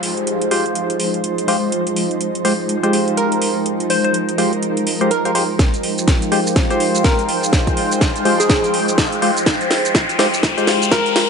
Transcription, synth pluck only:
3.17 3.56 A#4 medium
3.90 3.99 C5 medium
4.05 4.11 C5 medium
5.11 5.20 A#4 medium
5.25 5.32 A#4 medium
7.04 7.43 A#4 medium
8.40 9.07 G#4 medium
10.91 11.30 A#4 medium

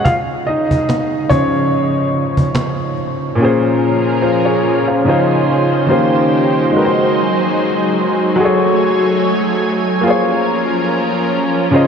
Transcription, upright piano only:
0.05 0.16 F4 medium
0.05 0.14 F5 loud
0.47 1.27 D#4 medium
0.47 1.33 D#5 medium
1.29 1.88 C#3 medium
1.29 1.88 F3 soft
1.29 2.94 C#4 medium
1.29 1.89 C5 medium
1.29 2.93 C#5 loud
3.35 5.00 A#2 medium
3.35 5.02 A#3 medium
3.40 5.03 C#4 medium
3.40 3.81 G#4 medium
3.45 3.83 C5 medium
4.22 4.45 F4 medium
4.22 4.45 C5 medium
4.45 4.85 G#4 medium
4.45 4.85 C#5 medium
4.88 5.08 C5 soft
4.88 5.27 F5 medium
5.05 5.88 C#3 medium
5.05 5.87 C#4 medium
5.05 5.90 D#4 medium
5.05 5.88 F4 medium
5.09 5.89 C5 medium
5.86 6.71 D#3 medium
5.86 6.72 A#3 medium
5.86 6.72 C#4 medium
5.86 6.73 F4 medium
5.86 6.73 G4 medium
5.91 6.73 C5 medium
6.69 8.34 G#3 medium
6.69 8.35 D#4 medium
6.74 8.36 F#4 medium
6.74 8.38 A#4 medium
6.78 6.83 B4 medium
6.85 8.42 C5 medium
8.36 10.01 F#3 medium
8.36 10.02 F#4 medium
8.40 10.03 G#4 medium
8.40 10.04 A4 medium
8.45 10.05 C#5 medium
10.01 11.67 A#3 medium
10.01 11.68 F4 medium
10.06 11.69 G#4 medium
10.06 11.70 C5 medium
10.10 11.71 C#5 medium
11.71 11.87 C#3 medium
11.71 11.87 C#4 medium
11.71 11.87 F4 medium
11.71 11.87 C5 medium
11.76 11.87 D#5 medium

